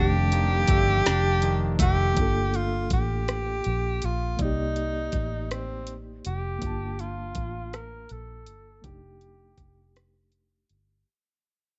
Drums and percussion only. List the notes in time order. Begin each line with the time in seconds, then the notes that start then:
0.32 closed hi-hat
0.68 kick, closed hi-hat
1.06 snare, closed hi-hat
1.42 closed hi-hat
1.79 kick, closed hi-hat
2.17 kick, closed hi-hat
2.54 closed hi-hat
2.90 kick, closed hi-hat
3.28 cross-stick, closed hi-hat
3.64 closed hi-hat
4.02 closed hi-hat
4.39 kick, closed hi-hat
4.76 closed hi-hat
5.12 kick, closed hi-hat
5.51 cross-stick, closed hi-hat
5.87 closed hi-hat
6.25 closed hi-hat
6.62 kick, closed hi-hat
6.99 closed hi-hat
7.35 kick, closed hi-hat
7.73 cross-stick, closed hi-hat
8.09 closed hi-hat
8.46 closed hi-hat
8.84 kick, closed hi-hat
9.21 closed hi-hat
9.58 kick, closed hi-hat
9.96 cross-stick, closed hi-hat
10.32 closed hi-hat
10.69 closed hi-hat